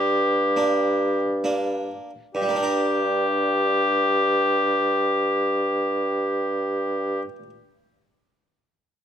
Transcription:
Already playing: harpsichord G2, bassoon G2, oboe G4
0.56 harpsichord A#3 D4
1.44 harpsichord A#3 D4
2.35 harpsichord G2, bassoon G2, oboe G4
2.42 harpsichord G3
2.49 harpsichord A#3
2.56 harpsichord D4
2.63 harpsichord A#4

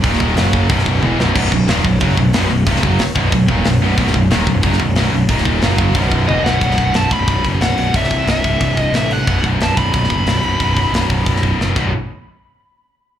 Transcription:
0.04 picked electric bass D#1, distorted electric guitar D#2 A#2 D#3, kick, open hi-hat
0.13 snare
0.20 kick
0.36 picked electric bass F#1, distorted electric guitar F#2 C#3 F#3, snare, open hi-hat
0.53 kick
0.69 picked electric bass B0, distorted electric guitar B1 F#2 B2, kick, open hi-hat
0.79 snare
0.86 kick
1.03 picked electric bass E1, distorted electric guitar E2 B2 E3, high tom
1.18 picked electric bass B0, distorted electric guitar B1 F#2 B2, snare
1.35 picked electric bass B0, distorted electric guitar B1 F#2 B2, kick, crash
1.52 picked electric bass B0, distorted electric guitar B1 F#2, kick
1.68 picked electric bass D#1, distorted electric guitar D#2 A#2 D#3, snare, open hi-hat
1.84 picked electric bass B0, distorted electric guitar B1 F#2, kick
2.00 picked electric bass F#1, distorted electric guitar F#2 C#3 F#3, kick, open hi-hat
2.17 picked electric bass B0, distorted electric guitar B1 F#2, kick
2.33 picked electric bass B0, distorted electric guitar B1 F#2 B2, snare, open hi-hat
2.50 picked electric bass B0, distorted electric guitar B1 F#2
2.66 picked electric bass C1, distorted electric guitar C2 G2 C3, kick, open hi-hat
2.76 snare
2.82 picked electric bass F#1, distorted electric guitar F#2 C#3 F#3, kick
2.99 muted distorted electric guitar stroke, muted picked electric bass stroke, snare, open hi-hat
3.15 picked electric bass B0, distorted electric guitar B1 F#2 B2, kick
3.32 picked electric bass B0, distorted electric guitar B1 F#2, kick, open hi-hat
3.48 picked electric bass D#1, distorted electric guitar D#2 A#2 D#3, kick
3.65 picked electric bass B0, distorted electric guitar B1 F#2, snare, open hi-hat
3.81 picked electric bass B0, distorted electric guitar B1 F#2 B2
3.97 picked electric bass B0, distorted electric guitar B1 F#2 B2, kick, open hi-hat
4.07 snare
4.14 picked electric bass B0, distorted electric guitar B1 F#2, kick
4.30 picked electric bass D#1, distorted electric guitar D#2 A#2 D#3, snare, open hi-hat
4.47 picked electric bass B0, distorted electric guitar B1 F#2, kick
4.63 picked electric bass F#1, distorted electric guitar F#2 C#3 F#3, kick, open hi-hat
4.73 snare
4.80 picked electric bass B0, distorted electric guitar B1 F#2, kick
4.95 picked electric bass B0, distorted electric guitar B1 F#2 B2, snare, open hi-hat
5.13 picked electric bass B0, distorted electric guitar B1 F#2
5.29 picked electric bass D#1, distorted electric guitar D#2 A#2 D#3, kick, open hi-hat
5.38 snare
5.45 kick
5.62 picked electric bass F#1, distorted electric guitar F#2 C#3 F#3, snare, open hi-hat
5.78 kick
5.94 picked electric bass B0, distorted electric guitar B1 F#2 B2, kick, open hi-hat
6.12 kick
6.28 picked electric bass E1, distorted electric guitar E2 B2 E3, lead electric guitar D#5, high tom
6.44 picked electric bass B0, distorted electric guitar B1 F#2 B2, lead electric guitar F#5, snare
6.61 picked electric bass B0, distorted electric guitar B1 F#2 B2, kick, open hi-hat
6.71 snare
6.78 picked electric bass B0, kick, open hi-hat
6.94 picked electric bass B0, lead electric guitar A5, snare, open hi-hat
7.11 picked electric bass B0, lead electric guitar B5, kick, open hi-hat
7.27 picked electric bass B0, kick, open hi-hat
7.45 picked electric bass F#1, kick, open hi-hat
7.61 picked electric bass B0, lead electric guitar F#5, snare, open hi-hat
7.78 picked electric bass B0, lead electric guitar F#5, open hi-hat
7.93 picked electric bass C1, distorted electric guitar C2 G2 C3, lead electric guitar E5, kick, open hi-hat
8.04 snare
8.11 kick, open hi-hat
8.27 picked electric bass C1, lead electric guitar E5, snare, open hi-hat
8.44 picked electric bass C1, kick, open hi-hat
8.60 picked electric bass C1, kick, open hi-hat
8.77 lead electric guitar D#5, kick, open hi-hat
8.92 picked electric bass A1, lead electric guitar E5, snare, open hi-hat
9.11 lead electric guitar F#5, open hi-hat
9.27 picked electric bass B0, distorted electric guitar B1 F#2, kick, open hi-hat
9.31 distorted electric guitar B2
9.44 picked electric bass B0, kick, open hi-hat
9.60 picked electric bass B0, lead electric guitar A5, snare, open hi-hat
9.77 picked electric bass B0, lead electric guitar B5, kick, open hi-hat
9.94 picked electric bass B0, kick, open hi-hat
10.04 snare
10.10 picked electric bass F#1, kick, open hi-hat
10.26 picked electric bass B0, snare, open hi-hat
10.43 picked electric bass B0, open hi-hat
10.59 picked electric bass B0, distorted electric guitar B1 F#2 B2, kick, open hi-hat
10.77 kick, open hi-hat
10.93 picked electric bass B0, snare, open hi-hat
11.09 picked electric bass B0, kick, open hi-hat
11.26 picked electric bass B0, kick, open hi-hat
11.36 snare
11.43 kick, open hi-hat
11.60 picked electric bass F#1, snare
11.76 picked electric bass B0, distorted electric guitar B1 F#2 B2, kick, crash

